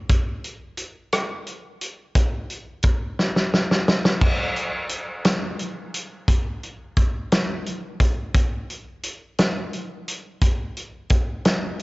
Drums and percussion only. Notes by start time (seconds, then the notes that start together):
0.09 kick, closed hi-hat
0.44 closed hi-hat
0.77 closed hi-hat
1.12 cross-stick, closed hi-hat
1.47 closed hi-hat
1.81 closed hi-hat
2.15 kick, closed hi-hat
2.50 closed hi-hat
2.83 kick, closed hi-hat
3.19 snare
3.36 snare
3.54 snare
3.71 snare
3.88 snare
4.05 snare
4.21 kick, crash
4.56 closed hi-hat
4.89 closed hi-hat
5.25 snare, closed hi-hat
5.59 closed hi-hat
5.94 closed hi-hat
6.28 kick, closed hi-hat
6.63 closed hi-hat
6.97 kick, closed hi-hat
7.32 snare, closed hi-hat
7.66 closed hi-hat
8.00 kick, closed hi-hat
8.35 kick, closed hi-hat
8.70 closed hi-hat
9.03 closed hi-hat
9.38 snare, closed hi-hat
9.73 closed hi-hat
10.08 closed hi-hat
10.42 kick, closed hi-hat
10.77 closed hi-hat
11.10 kick, closed hi-hat
11.45 snare, closed hi-hat
11.79 closed hi-hat